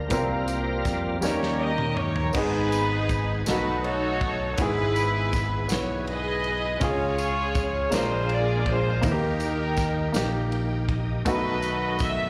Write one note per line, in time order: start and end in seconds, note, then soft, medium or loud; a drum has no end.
0.00 1.21 F3 medium
0.00 0.10 G3 medium
0.00 2.32 G3 medium
0.00 0.11 A#3 medium
0.00 2.32 A#3 medium
0.00 0.13 D4 medium
0.00 0.12 F4 medium
0.00 0.99 A#4 medium
0.00 0.14 C5 medium
0.08 0.82 C2 loud
0.08 1.19 C3 medium
0.08 1.17 G3 medium
0.08 0.87 G3 medium
0.08 1.18 A#3 soft
0.08 0.87 A#3 medium
0.08 0.88 C4 medium
0.08 1.22 C4 medium
0.08 1.18 F4 medium
0.08 kick loud
0.08 closed hi-hat loud
0.08 tambourine medium
0.12 0.88 F4 medium
0.12 0.89 A#4 medium
0.48 closed hi-hat medium
0.48 tambourine medium
0.85 1.20 F2 medium
0.85 kick medium
0.85 snare soft
0.85 closed hi-hat medium
0.85 tambourine medium
1.21 2.31 D#2 loud
1.21 2.31 D#3 medium
1.21 2.34 D#3 medium
1.21 1.98 G3 medium
1.21 1.72 G3 medium
1.21 1.99 A#3 medium
1.21 1.73 A#3 soft
1.21 1.72 C#4 medium
1.21 1.99 C#4 medium
1.21 2.34 C#4 medium
1.21 2.00 D#4 medium
1.21 2.31 G4 medium
1.21 2.31 A#4 medium
1.21 2.00 A#4 medium
1.21 1.58 C#5 loud
1.21 snare medium
1.21 tambourine medium
1.43 snare medium
1.61 1.98 D#5 loud
1.78 mid tom medium
1.97 2.35 C#5 loud
1.97 mid tom medium
2.16 floor tom medium
2.33 3.42 G#1 loud
2.33 3.42 G#2 medium
2.33 3.10 B3 medium
2.33 3.46 B3 medium
2.33 3.46 D#4 medium
2.33 3.11 D#4 medium
2.33 3.43 D#4 medium
2.33 3.46 G#4 medium
2.33 3.43 G#4 medium
2.33 kick loud
2.33 crash loud
2.33 tambourine medium
2.37 3.12 G#4 medium
2.37 3.44 B4 loud
2.72 ride soft
2.72 tambourine medium
3.09 kick medium
3.09 ride soft
3.09 tambourine medium
3.46 4.54 B1 loud
3.46 4.55 B2 medium
3.46 4.58 F#3 medium
3.46 4.58 A3 medium
3.46 4.22 A3 medium
3.46 4.58 B3 medium
3.46 4.23 B3 medium
3.46 3.53 D4 soft
3.46 4.54 D#4 medium
3.46 4.23 D#4 medium
3.46 3.83 F#4 medium
3.46 4.24 F#4 medium
3.46 4.58 A4 medium
3.46 3.55 A#4 medium
3.46 3.82 B4 medium
3.46 snare loud
3.46 ride medium
3.46 tambourine medium
3.53 4.61 D#4 medium
3.53 4.28 B4 medium
3.84 4.54 F#4 medium
3.84 4.54 A4 medium
3.84 4.58 C#5 loud
3.84 ride soft
4.21 kick medium
4.21 ride soft
4.57 5.66 G#1 loud
4.57 5.66 G#2 medium
4.57 5.34 B3 medium
4.57 6.78 B3 medium
4.57 5.65 E4 medium
4.57 6.77 E4 medium
4.57 5.35 E4 medium
4.57 5.66 G#4 medium
4.57 5.36 G#4 medium
4.57 5.70 B4 loud
4.57 kick loud
4.57 ride medium
4.57 tambourine medium
4.67 6.81 G#4 medium
4.96 ride soft
4.96 tambourine medium
5.33 kick medium
5.33 snare soft
5.33 ride soft
5.33 tambourine medium
5.68 6.77 B1 loud
5.68 6.45 B3 medium
5.68 6.46 E4 medium
5.68 6.47 B4 medium
5.68 6.05 C#5 medium
5.68 snare loud
5.68 ride medium
5.68 tambourine medium
6.07 6.78 G#4 medium
6.07 6.78 B4 medium
6.07 6.83 D#5 loud
6.07 ride soft
6.44 ride soft
6.80 7.88 C#2 loud
6.80 7.89 C#3 medium
6.80 7.56 C#4 medium
6.80 7.92 C#4 medium
6.80 7.88 F4 medium
6.80 7.57 F4 medium
6.80 7.91 F4 medium
6.80 6.88 G4 medium
6.80 7.88 G#4 medium
6.80 7.58 G#4 medium
6.80 7.93 C#5 loud
6.80 kick loud
6.80 ride medium
6.80 tambourine medium
6.88 7.96 G#4 medium
7.18 ride soft
7.18 tambourine medium
7.55 kick loud
7.55 ride soft
7.55 tambourine medium
7.90 9.00 A#1 loud
7.90 8.99 A#2 medium
7.90 8.67 G#3 medium
7.90 9.04 G#3 medium
7.90 8.67 A#3 medium
7.90 9.02 A#3 medium
7.90 8.68 D4 medium
7.90 9.04 D4 medium
7.90 8.68 F4 medium
7.90 9.04 F4 medium
7.90 9.00 F4 medium
7.90 9.00 G#4 medium
7.90 9.04 A#4 medium
7.90 8.69 A#4 medium
7.90 ride medium
7.90 tambourine medium
7.94 8.31 C5 loud
7.94 snare loud
8.29 8.68 D5 loud
8.29 ride soft
8.66 9.05 C5 loud
8.66 kick medium
8.66 ride soft
9.01 10.11 D#2 loud
9.01 10.11 D#3 medium
9.01 9.78 A#3 medium
9.01 11.22 A#3 medium
9.01 9.79 D#4 medium
9.01 11.22 D#4 medium
9.01 9.10 E4 medium
9.01 kick loud
9.01 ride medium
9.01 tambourine medium
9.05 10.49 D#4 medium
9.05 9.11 E4 medium
9.05 10.49 G4 medium
9.05 10.53 A#4 medium
9.10 11.25 G4 medium
9.10 9.83 G4 medium
9.40 ride soft
9.40 tambourine medium
9.77 kick medium
9.77 snare soft
9.77 ride soft
9.77 tambourine medium
10.12 11.22 A#1 medium
10.12 10.89 A#3 medium
10.12 10.90 D#4 medium
10.12 10.91 G4 medium
10.12 ride medium
10.12 tambourine medium
10.16 snare loud
10.52 10.86 G5 medium
10.52 ride soft
10.89 11.23 D#5 medium
10.89 kick medium
10.89 ride soft
11.25 12.30 B1 loud
11.25 12.30 B2 medium
11.25 12.30 D#3 medium
11.25 12.30 F#3 medium
11.25 12.02 A3 medium
11.25 12.30 A3 medium
11.25 12.02 B3 medium
11.25 12.30 B3 medium
11.25 12.02 D#4 medium
11.25 12.30 F#4 medium
11.25 12.03 F#4 medium
11.25 12.30 A4 medium
11.25 11.97 B4 loud
11.25 12.03 B4 medium
11.25 12.30 D#5 medium
11.25 kick loud
11.25 ride medium
11.25 tambourine medium
11.62 ride soft
11.62 tambourine medium
11.99 12.30 E5 loud
11.99 kick loud
11.99 ride soft
11.99 tambourine medium